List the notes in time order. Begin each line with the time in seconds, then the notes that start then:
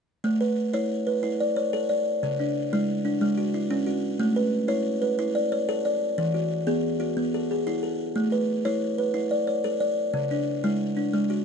0.24 A3
0.41 B4
0.74 E4 C#5
1.07 B4
1.23 E4
1.40 D5
1.56 C#5
1.73 A4
1.89 D5
2.23 C#3
2.40 D4
2.73 G#3 E4
3.05 D4
3.21 G#3
3.37 F#4
3.54 E4
3.71 C#4
3.87 F#4
4.19 A3
4.36 B4
4.68 E4 C#5
5.02 B4
5.19 E4
5.35 D5
5.52 C#5
5.69 A4
5.85 D5
6.18 E3
6.34 F#4
6.67 B3 G#4
7.00 F#4
7.17 B3
7.34 A4
7.51 G#4
7.67 E4
7.83 A4
8.16 A3
8.32 B4
8.65 E4 C#5
8.98 B4
9.14 E4
9.31 D5
9.47 C#5
9.64 A4
9.80 D5
10.14 C#3
10.31 D4
10.64 G#3 E4
10.97 D4
11.13 G#3
11.30 F#4